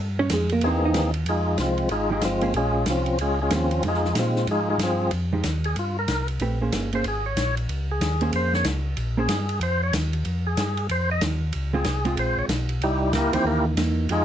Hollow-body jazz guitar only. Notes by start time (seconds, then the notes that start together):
0.19 C#4 C#5
0.33 G#3 G#4
0.52 A#3 A#4
0.66 C4 C5
0.85 D#4 D#5
2.10 F3 G#3 D#4 G4
2.42 A#3 C#4 G#4 C5
3.51 A#3 C#4 G#4 C5
3.84 F3 G#3 D#4
5.33 F3 G#3 D#4 G4
6.42 A3 C4 G4 B4
6.61 A#3 C#4 G#4 C5
6.93 A#3 C#4 G#4 C5
8.22 A#3 C#4 G#4 C5
9.18 A#3 C#4 G#4 C5
11.73 G#3 C4 F4
12.05 G#3 C4 F4
13.33 E3 A#3 D#4
13.77 E3 A#3 D#4
14.10 F3 G#3 D#4 G4